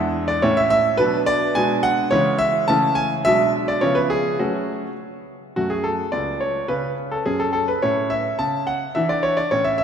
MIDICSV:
0, 0, Header, 1, 2, 480
1, 0, Start_track
1, 0, Key_signature, 3, "minor"
1, 0, Tempo, 562852
1, 847, Time_signature, 2, 2, 24, 8
1, 2770, Tempo, 576369
1, 5170, Tempo, 561798
1, 8339, End_track
2, 0, Start_track
2, 0, Title_t, "Grand piano"
2, 0, Program_c, 0, 0
2, 0, Note_on_c, 0, 40, 60
2, 0, Note_on_c, 0, 56, 46
2, 0, Note_on_c, 0, 62, 46
2, 0, Note_on_c, 0, 64, 45
2, 0, Note_on_c, 0, 76, 82
2, 237, Note_on_c, 0, 74, 84
2, 240, Note_off_c, 0, 76, 0
2, 330, Note_off_c, 0, 56, 0
2, 333, Note_off_c, 0, 62, 0
2, 336, Note_off_c, 0, 64, 0
2, 349, Note_off_c, 0, 40, 0
2, 361, Note_on_c, 0, 73, 87
2, 362, Note_off_c, 0, 74, 0
2, 364, Note_on_c, 0, 57, 46
2, 366, Note_on_c, 0, 45, 65
2, 370, Note_on_c, 0, 61, 43
2, 377, Note_on_c, 0, 64, 44
2, 484, Note_off_c, 0, 73, 0
2, 486, Note_on_c, 0, 76, 90
2, 587, Note_off_c, 0, 76, 0
2, 600, Note_on_c, 0, 76, 104
2, 811, Note_off_c, 0, 57, 0
2, 814, Note_off_c, 0, 61, 0
2, 817, Note_off_c, 0, 64, 0
2, 819, Note_off_c, 0, 76, 0
2, 831, Note_on_c, 0, 71, 97
2, 832, Note_off_c, 0, 45, 0
2, 840, Note_on_c, 0, 47, 64
2, 842, Note_on_c, 0, 54, 48
2, 845, Note_on_c, 0, 59, 49
2, 849, Note_on_c, 0, 62, 48
2, 1078, Note_on_c, 0, 74, 101
2, 1079, Note_off_c, 0, 71, 0
2, 1290, Note_off_c, 0, 54, 0
2, 1291, Note_off_c, 0, 59, 0
2, 1294, Note_off_c, 0, 62, 0
2, 1309, Note_off_c, 0, 47, 0
2, 1322, Note_off_c, 0, 74, 0
2, 1323, Note_on_c, 0, 80, 100
2, 1330, Note_on_c, 0, 47, 63
2, 1330, Note_on_c, 0, 56, 50
2, 1334, Note_on_c, 0, 59, 46
2, 1342, Note_on_c, 0, 62, 47
2, 1560, Note_on_c, 0, 78, 107
2, 1566, Note_off_c, 0, 80, 0
2, 1776, Note_off_c, 0, 56, 0
2, 1778, Note_off_c, 0, 59, 0
2, 1782, Note_off_c, 0, 62, 0
2, 1796, Note_off_c, 0, 47, 0
2, 1796, Note_on_c, 0, 73, 96
2, 1805, Note_off_c, 0, 78, 0
2, 1809, Note_on_c, 0, 49, 68
2, 1809, Note_on_c, 0, 52, 49
2, 1811, Note_on_c, 0, 56, 49
2, 1817, Note_on_c, 0, 61, 50
2, 2018, Note_off_c, 0, 73, 0
2, 2034, Note_on_c, 0, 76, 107
2, 2254, Note_off_c, 0, 52, 0
2, 2255, Note_off_c, 0, 56, 0
2, 2258, Note_off_c, 0, 61, 0
2, 2274, Note_off_c, 0, 49, 0
2, 2281, Note_off_c, 0, 76, 0
2, 2283, Note_on_c, 0, 81, 102
2, 2290, Note_on_c, 0, 49, 62
2, 2291, Note_on_c, 0, 52, 48
2, 2296, Note_on_c, 0, 57, 47
2, 2301, Note_on_c, 0, 61, 45
2, 2518, Note_on_c, 0, 80, 100
2, 2526, Note_off_c, 0, 81, 0
2, 2667, Note_off_c, 0, 80, 0
2, 2739, Note_off_c, 0, 52, 0
2, 2741, Note_off_c, 0, 57, 0
2, 2744, Note_off_c, 0, 61, 0
2, 2758, Note_off_c, 0, 49, 0
2, 2769, Note_on_c, 0, 76, 112
2, 2778, Note_on_c, 0, 47, 69
2, 2779, Note_on_c, 0, 54, 47
2, 2781, Note_on_c, 0, 56, 45
2, 2790, Note_on_c, 0, 62, 46
2, 2985, Note_off_c, 0, 76, 0
2, 3130, Note_on_c, 0, 74, 78
2, 3219, Note_off_c, 0, 54, 0
2, 3220, Note_off_c, 0, 56, 0
2, 3225, Note_off_c, 0, 62, 0
2, 3238, Note_off_c, 0, 47, 0
2, 3240, Note_on_c, 0, 73, 79
2, 3245, Note_on_c, 0, 53, 43
2, 3247, Note_on_c, 0, 49, 57
2, 3249, Note_off_c, 0, 74, 0
2, 3252, Note_on_c, 0, 59, 43
2, 3255, Note_on_c, 0, 61, 42
2, 3354, Note_on_c, 0, 71, 82
2, 3364, Note_off_c, 0, 73, 0
2, 3478, Note_on_c, 0, 68, 83
2, 3482, Note_off_c, 0, 71, 0
2, 3696, Note_off_c, 0, 53, 0
2, 3699, Note_off_c, 0, 59, 0
2, 3701, Note_off_c, 0, 61, 0
2, 3716, Note_off_c, 0, 49, 0
2, 3723, Note_on_c, 0, 66, 68
2, 3726, Note_off_c, 0, 68, 0
2, 3729, Note_on_c, 0, 61, 40
2, 3730, Note_on_c, 0, 57, 42
2, 3731, Note_on_c, 0, 54, 49
2, 4070, Note_off_c, 0, 54, 0
2, 4117, Note_off_c, 0, 61, 0
2, 4118, Note_off_c, 0, 57, 0
2, 4162, Note_off_c, 0, 66, 0
2, 4697, Note_on_c, 0, 66, 71
2, 4702, Note_on_c, 0, 57, 35
2, 4706, Note_on_c, 0, 42, 46
2, 4812, Note_on_c, 0, 68, 68
2, 4817, Note_off_c, 0, 66, 0
2, 4926, Note_on_c, 0, 69, 70
2, 4933, Note_off_c, 0, 68, 0
2, 5081, Note_off_c, 0, 42, 0
2, 5143, Note_off_c, 0, 69, 0
2, 5161, Note_on_c, 0, 74, 67
2, 5168, Note_on_c, 0, 37, 41
2, 5405, Note_on_c, 0, 73, 61
2, 5407, Note_off_c, 0, 74, 0
2, 5554, Note_off_c, 0, 37, 0
2, 5621, Note_off_c, 0, 57, 0
2, 5625, Note_off_c, 0, 73, 0
2, 5643, Note_on_c, 0, 71, 73
2, 5648, Note_on_c, 0, 61, 32
2, 5650, Note_on_c, 0, 49, 48
2, 5863, Note_off_c, 0, 71, 0
2, 6011, Note_on_c, 0, 69, 64
2, 6037, Note_off_c, 0, 49, 0
2, 6099, Note_off_c, 0, 61, 0
2, 6132, Note_on_c, 0, 68, 69
2, 6134, Note_off_c, 0, 69, 0
2, 6135, Note_on_c, 0, 61, 36
2, 6136, Note_on_c, 0, 42, 44
2, 6252, Note_on_c, 0, 69, 71
2, 6255, Note_off_c, 0, 68, 0
2, 6351, Note_off_c, 0, 69, 0
2, 6364, Note_on_c, 0, 69, 78
2, 6492, Note_off_c, 0, 69, 0
2, 6494, Note_on_c, 0, 71, 70
2, 6524, Note_off_c, 0, 42, 0
2, 6586, Note_off_c, 0, 61, 0
2, 6618, Note_off_c, 0, 71, 0
2, 6618, Note_on_c, 0, 73, 76
2, 6621, Note_on_c, 0, 61, 35
2, 6625, Note_on_c, 0, 45, 52
2, 6854, Note_on_c, 0, 76, 80
2, 6861, Note_off_c, 0, 73, 0
2, 7009, Note_off_c, 0, 45, 0
2, 7098, Note_off_c, 0, 76, 0
2, 7098, Note_on_c, 0, 81, 82
2, 7102, Note_on_c, 0, 49, 48
2, 7315, Note_off_c, 0, 81, 0
2, 7338, Note_on_c, 0, 78, 79
2, 7483, Note_off_c, 0, 49, 0
2, 7544, Note_off_c, 0, 61, 0
2, 7577, Note_off_c, 0, 78, 0
2, 7578, Note_on_c, 0, 76, 77
2, 7584, Note_on_c, 0, 62, 39
2, 7588, Note_on_c, 0, 52, 54
2, 7697, Note_off_c, 0, 76, 0
2, 7701, Note_on_c, 0, 74, 75
2, 7817, Note_on_c, 0, 73, 80
2, 7818, Note_off_c, 0, 74, 0
2, 7936, Note_off_c, 0, 73, 0
2, 7937, Note_on_c, 0, 74, 73
2, 7965, Note_off_c, 0, 52, 0
2, 8024, Note_off_c, 0, 62, 0
2, 8055, Note_off_c, 0, 74, 0
2, 8059, Note_on_c, 0, 73, 80
2, 8064, Note_on_c, 0, 45, 48
2, 8066, Note_on_c, 0, 61, 37
2, 8173, Note_on_c, 0, 76, 84
2, 8176, Note_off_c, 0, 73, 0
2, 8276, Note_off_c, 0, 76, 0
2, 8288, Note_on_c, 0, 76, 89
2, 8339, Note_off_c, 0, 45, 0
2, 8339, Note_off_c, 0, 61, 0
2, 8339, Note_off_c, 0, 76, 0
2, 8339, End_track
0, 0, End_of_file